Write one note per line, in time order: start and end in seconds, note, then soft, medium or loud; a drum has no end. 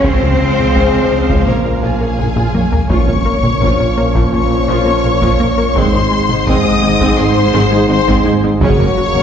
0.00 1.44 C#3 medium
0.00 2.54 C#3 medium
0.00 1.47 C5 loud
0.04 0.15 C#2 loud
0.04 1.49 C#2 medium
0.04 0.12 C#2 medium
0.04 2.58 F3 loud
0.04 1.45 G#3 loud
0.04 1.47 C4 loud
0.04 0.21 C#4 loud
0.04 1.45 C5 loud
0.04 2.66 F5 medium
0.04 taiko medium
0.22 0.33 C#2 medium
0.22 0.30 C#2 medium
0.22 0.30 G#4 medium
0.40 0.51 C#3 medium
0.58 0.69 C#2 medium
0.58 0.66 C#2 medium
0.58 0.66 G#4 medium
0.58 taiko mid medium
0.76 0.87 C#2 loud
0.76 0.84 C#2 loud
0.76 0.93 C#4 loud
0.76 taiko medium
0.94 1.05 C#2 medium
1.12 1.19 C#2 medium
1.12 1.22 C#3 medium
1.12 1.19 F4 medium
1.30 1.40 C#2 loud
1.30 1.37 C#2 medium
1.30 1.46 C#4 medium
1.30 taiko medium
1.47 1.55 A#1 medium
1.47 2.90 A#1 medium
1.47 1.58 A#2 medium
1.47 2.59 A#2 medium
1.47 2.56 A#3 medium
1.47 2.19 A#3 medium
1.47 1.83 A#4 medium
1.47 1.55 C#5 medium
1.65 1.76 A#2 medium
1.83 1.91 A#1 medium
1.83 1.94 A#2 loud
1.83 2.00 F4 medium
1.83 2.87 G#4 medium
1.83 2.87 G#5 medium
2.01 2.09 A#1 medium
2.01 2.12 A#3 medium
2.01 2.08 C#5 medium
2.18 2.27 A#1 medium
2.18 2.29 A#2 medium
2.18 2.26 A#4 medium
2.18 taiko low-mid medium
2.36 2.44 A#1 medium
2.36 2.47 A#2 loud
2.36 2.54 F4 medium
2.36 taiko low-mid loud
2.55 2.62 A#1 medium
2.55 2.65 A#3 medium
2.55 2.62 C#5 soft
2.55 taiko high loud
2.72 2.80 A#1 soft
2.72 2.83 A#3 medium
2.72 2.80 A#4 medium
2.72 taiko low medium
2.90 2.97 A#1 medium
2.90 5.78 A#1 medium
2.90 3.01 A#2 medium
2.90 5.72 A#2 medium
2.90 2.98 A#2 medium
2.90 3.07 F3 medium
2.90 5.72 F3 medium
2.90 5.72 A#3 medium
2.90 5.72 C#4 medium
2.90 3.07 F4 medium
2.90 4.33 C#5 medium
2.90 4.33 C#6 loud
2.90 taiko medium
2.90 impact medium
3.08 3.19 A#2 medium
3.08 3.16 A#2 medium
3.08 3.15 C#4 soft
3.08 3.16 C#5 soft
3.25 3.36 A#3 medium
3.43 3.54 A#2 medium
3.43 3.51 A#2 medium
3.43 3.51 C#4 medium
3.43 3.51 C#5 medium
3.43 taiko mid medium
3.61 3.69 A#1 loud
3.61 3.72 A#2 loud
3.61 3.70 A#2 medium
3.61 3.79 F3 medium
3.61 3.79 F4 medium
3.61 taiko medium
3.80 3.91 A#2 medium
3.98 4.05 A#1 medium
3.98 4.05 A#2 medium
3.98 4.08 A#3 medium
3.98 4.05 A#3 medium
3.98 4.05 A#4 medium
4.15 4.26 A#2 loud
4.15 4.23 A#2 medium
4.15 4.32 F3 medium
4.15 4.32 F4 medium
4.15 taiko medium
4.33 4.41 A#1 medium
4.33 4.44 A#2 medium
4.33 4.41 A#2 medium
4.33 4.41 C#4 medium
4.33 5.74 C#5 loud
4.33 4.41 C#5 medium
4.33 5.74 C#6 loud
4.50 4.61 A#2 medium
4.68 4.76 A#1 medium
4.68 4.79 A#2 loud
4.68 4.77 A#2 loud
4.68 4.85 F3 medium
4.68 4.86 F4 medium
4.86 4.95 A#2 medium
4.86 4.97 A#3 medium
4.86 4.94 C#4 medium
4.86 4.94 C#5 medium
5.04 5.12 A#1 medium
5.04 5.15 A#2 medium
5.04 5.13 A#2 medium
5.04 5.12 A#3 medium
5.04 5.12 A#4 medium
5.22 5.33 A#2 loud
5.22 5.30 A#2 loud
5.22 5.39 F3 medium
5.22 5.39 F4 medium
5.22 taiko medium
5.39 5.47 A#1 medium
5.39 5.48 A#2 medium
5.39 5.51 A#3 medium
5.39 5.47 C#4 medium
5.39 5.47 C#5 medium
5.57 5.65 A#2 medium
5.57 5.65 A#3 medium
5.57 5.69 A#3 medium
5.57 5.65 A#4 medium
5.75 5.83 G#1 medium
5.75 8.64 G#1 medium
5.75 5.83 G#2 medium
5.75 5.87 G#2 loud
5.75 8.58 G#2 medium
5.75 5.93 G#3 loud
5.75 8.62 G#3 medium
5.75 8.46 C4 medium
5.75 5.93 C4 medium
5.75 8.46 D#4 medium
5.75 6.46 C5 medium
5.75 6.48 C6 loud
5.75 taiko loud
5.93 6.04 G#2 medium
5.93 6.01 G#2 medium
5.93 6.01 D#4 medium
5.93 6.01 G#4 medium
6.11 6.22 G#3 medium
6.29 6.40 G#2 medium
6.29 6.36 G#2 medium
6.29 6.36 D#4 medium
6.29 6.36 G#4 medium
6.29 taiko mid medium
6.46 6.54 G#1 loud
6.46 6.54 G#2 loud
6.46 6.58 G#2 loud
6.46 6.64 G#3 loud
6.46 6.64 C4 loud
6.46 7.19 D#5 loud
6.46 7.19 D#6 loud
6.46 taiko loud
6.66 6.76 G#2 medium
6.82 6.90 G#1 medium
6.82 6.90 G#2 medium
6.82 6.94 G#3 medium
6.82 6.90 C4 medium
6.82 6.89 D#4 medium
6.99 7.08 G#2 loud
6.99 7.12 G#2 loud
6.99 7.17 G#3 loud
6.99 7.17 C4 loud
6.99 taiko medium
7.18 7.25 G#1 medium
7.18 7.25 G#2 medium
7.18 7.29 G#2 medium
7.18 7.25 D#4 medium
7.18 7.25 G#4 medium
7.18 7.90 C5 loud
7.18 7.89 C6 loud
7.37 7.48 G#2 medium
7.53 7.61 G#1 loud
7.53 7.65 G#2 loud
7.53 7.62 G#2 loud
7.53 7.71 G#3 loud
7.53 7.71 C4 loud
7.71 7.80 G#2 medium
7.71 7.83 G#3 medium
7.71 7.79 D#4 medium
7.71 7.79 G#4 medium
7.88 7.97 G#1 medium
7.88 7.97 G#2 medium
7.88 8.01 G#2 medium
7.88 7.96 C4 medium
7.88 7.96 D#4 medium
7.88 8.26 C5 loud
7.88 8.25 C6 loud
8.07 8.15 G#2 loud
8.07 8.19 G#2 loud
8.07 8.24 G#3 loud
8.07 8.24 C4 medium
8.07 taiko loud
8.24 8.33 G#1 medium
8.24 8.33 G#2 medium
8.24 8.37 G#3 medium
8.24 8.32 D#4 medium
8.24 8.32 G#4 medium
8.43 8.51 G#2 medium
8.43 8.55 G#3 medium
8.43 8.50 C4 medium
8.43 8.50 D#4 medium
8.61 8.69 F#1 loud
8.61 9.23 F#1 medium
8.61 8.68 F#2 loud
8.61 8.72 F#2 loud
8.61 8.78 C#3 loud
8.61 9.23 C#3 loud
8.61 9.23 F#3 loud
8.61 9.23 A#3 loud
8.61 8.78 C#4 loud
8.61 9.23 F#4 loud
8.61 9.23 C#5 loud
8.61 9.23 C#6 loud
8.61 taiko loud
8.79 8.86 F#2 medium
8.79 8.90 F#2 medium
8.79 8.87 A#3 medium
8.79 8.87 A#4 medium
8.98 9.08 F#3 medium
9.15 9.22 F#2 medium
9.15 9.23 F#2 medium
9.15 9.23 A#3 medium
9.15 9.22 A#4 medium
9.15 taiko mid medium